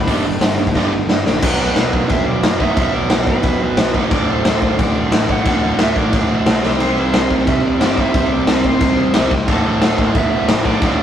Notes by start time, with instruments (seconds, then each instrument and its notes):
0.07 picked electric bass G1, distorted electric guitar G2 D3 G3 B3 D4 G4, kick, open hi-hat
0.26 picked electric bass G1, distorted electric guitar G2 D3
0.41 picked electric bass G1, distorted electric guitar G2 D3, snare, open hi-hat
0.59 picked electric bass G1, distorted electric guitar G2 D3
0.67 kick
0.75 picked electric bass G1, distorted electric guitar G2 D3 G3, kick, snare
0.93 picked electric bass G1, distorted electric guitar G2 D3
1.09 picked electric bass G1, distorted electric guitar G2 D3, snare
1.26 picked electric bass A#1, distorted electric guitar G2 D3 G3 B3 D4 G4, snare
1.42 picked electric bass B1, distorted electric guitar B2 F#3 B3, overdriven electric guitar B4, kick, crash
1.60 picked electric bass B1, overdriven electric guitar B4
1.76 picked electric bass B1, snare, crash
1.93 picked electric bass B1, kick
2.09 picked electric bass B1, overdriven electric guitar E5, kick, crash
2.27 picked electric bass B1, overdriven electric guitar D5
2.43 picked electric bass F#2, overdriven electric guitar D5, snare, crash
2.60 distorted electric guitar B2 F#3 B3, overdriven electric guitar E5, kick
2.76 picked electric bass B1, distorted electric guitar B2 F#3 B3, kick, crash
2.94 overdriven electric guitar D5
3.10 picked electric bass B1, snare, crash
3.27 picked electric bass F#1, overdriven electric guitar B4, kick
3.43 picked electric bass B1, kick, crash
3.61 picked electric bass B1
3.77 picked electric bass B1, snare, crash
3.94 picked electric bass E2, distorted electric guitar B2 F#3 B3, kick
4.11 picked electric bass D1, distorted electric guitar D2 A2 D3, overdriven electric guitar D5, kick, crash
4.28 picked electric bass D1, overdriven electric guitar C5
4.44 picked electric bass D1, snare, crash
4.62 picked electric bass D1, kick
4.79 picked electric bass D1, overdriven electric guitar D5, kick, crash
4.95 picked electric bass D1
5.12 picked electric bass A1, snare, crash
5.29 distorted electric guitar D2 A2 D3, overdriven electric guitar F#5, kick
5.45 picked electric bass D1, distorted electric guitar D2 A2 D3, overdriven electric guitar F#5, kick, crash
5.79 picked electric bass D1, overdriven electric guitar E5, snare, crash
5.96 picked electric bass A1, overdriven electric guitar D5, kick
6.13 picked electric bass D1, overdriven electric guitar D5, kick, crash
6.30 picked electric bass D1
6.46 picked electric bass B1, snare, crash
6.63 picked electric bass C2, distorted electric guitar C3 G3 C4, snare
6.80 picked electric bass C2, distorted electric guitar C3 G3 C4 E4 G4 C5, overdriven electric guitar C5, crash
6.97 picked electric bass C2, overdriven electric guitar C5
7.14 picked electric bass C2, snare, crash
7.30 picked electric bass C2, kick
7.47 picked electric bass C2, overdriven electric guitar E5, kick, crash
7.64 picked electric bass C2, overdriven electric guitar D5
7.81 picked electric bass G1, distorted electric guitar C3 G3 C4, overdriven electric guitar D5, snare, crash
7.97 distorted electric guitar C3 G3 C4 E4 G4 C5, overdriven electric guitar E5, kick
8.13 picked electric bass C2, distorted electric guitar C3 G3 C4 E4 G4 C5, kick, crash
8.32 overdriven electric guitar D5
8.47 picked electric bass C2, snare, crash
8.64 picked electric bass G1, overdriven electric guitar C5, kick
8.81 picked electric bass C2, kick, crash
8.98 picked electric bass C2
9.14 picked electric bass C2, distorted electric guitar C3 G3 C4, snare, crash
9.31 picked electric bass C2, distorted electric guitar C3 G3 C4 E4 G4 C5, kick
9.47 picked electric bass D1, distorted electric guitar D2 A2 D3 A3 F#4, overdriven electric guitar A4, kick, crash
9.66 picked electric bass D1, overdriven electric guitar A4
9.82 picked electric bass D1, snare, crash
9.98 picked electric bass D1, kick
10.15 picked electric bass D1, overdriven electric guitar E5, kick, crash
10.32 picked electric bass D1
10.48 picked electric bass A1, snare, crash
10.64 distorted electric guitar D2 A2 D3 A3 F#4, overdriven electric guitar D5, kick
10.81 picked electric bass D1, distorted electric guitar D2 A2 D3 A3 F#4, overdriven electric guitar D5, kick, crash